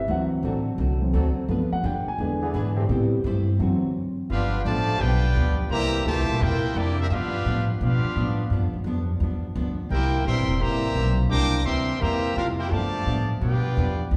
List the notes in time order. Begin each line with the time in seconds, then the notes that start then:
0.08 D2 D3 E3 F#3 A3 C4 F#4 F#5
0.43 A1 D3 F#3 A3 C4 D4 F#4 A4
0.78 C2 D3 A3 C4 F#4
1.02 E3 F#3 C4
1.13 D2 D3 F#3 A3 C4 D4 F#4 A4
1.36 muted upright bass stroke
1.48 G2 F3 G3 A3 B3 D4 F4 B4
1.72 F#5, muted upright bass stroke
1.84 F2 G3 D4 F4 B4 G5
2.06 G#5, muted upright bass stroke
2.18 E2 D3 E3 G#3 B3 D4 G#4 B4
2.41 E3 B3 D4 G#4
2.54 G#2 E3 D4 G#4 B4
2.76 E3 A3 C4 G4
2.89 A2 C3 G3 A3 B3 E4 G4 C5
3.24 G2 A3 E4 G4 C5
3.59 F#2 D3 E3 F#3 A3 C4 F#4
3.82 muted upright bass stroke
4.30 G1 G2 F3 B3 D4 F4 G4 B4 F5
4.62 A1 G2 D3 F3 A3 G4 D5 F5 G5 A5
4.66 F3 B3 D4
5.00 B1 G2 F3 B3 D4 F4 G4 B4 D5 G5
5.36 D2 G2 F3 B3 D4
5.70 C2 C3 E3 G3 A#3 E4 G4 C5 E5 A#5
6.05 D2 A#2 C3 E3 G3 A3 A#3 E4 G4 C5 E5 A5
6.17 C2
6.29 A#1
6.40 E2 C3 G3 A#3 E4 G4 A#4 C5 G5
6.63 muted upright bass stroke
6.75 F2 C3 G3 A#3 D4 E4 G4 D5
6.98 G3 A#3 C4 E4 G4 A#4 E5
7.07 G2 B3 D4 F4 E5
7.12 F3 B3 D4 G4 B4 F5
7.45 G2 A2 F3 B3 D4
7.81 G2 B2 F3 B3 D4 F4 G4 B4 F5
8.04 muted upright bass stroke
8.16 G2 A2 F3 B3 D4
8.50 G2 F3 B3 D4
8.61 F2
8.73 D2
8.84 F2 G2 F3 B3 D4
9.20 E2 G2 F3 B3 D4
9.55 D2 G2 F3 B3 D4
9.90 C2 C3 G3 A#3 E4 G4 A#4 C5 G5
10.25 A#1 C3 E3 G3 A#3 C4 E4 A#4 E5 G5 C6
10.37 G1
10.48 E1
10.60 A1 C3 E3 G3 A#3 E4 G4 C5 E5 A#5
10.95 B1 C3 G3 A#3 E4
11.28 C2 C3 G3 A#3 D4 C5 G5 A#5 D6
11.33 E4
11.63 D2 C3 E3 G3 C4 A#4 E5 G5 C6
11.67 A#3 E4
11.99 E2 C3 E3 G3 A#3 G4 C5 E5 A#5
12.03 A#3 E4
12.35 F2 C3 G3 A#3 D4 E4 F4 G4 A#4 F5
12.57 A#3 E4 G4 A#4 C5 G5
12.69 G2 D3 F3 A3 B3 G4 D5 F5 A5
12.73 D4
13.06 G2 A2 F3 B3 D4
13.40 G2 B2 F3 B3 D4 F4 G4 B4 D5 G5
13.44 D4
13.77 E2 G2 F3 B3 D4
14.11 D2 G2 F3 B3 D4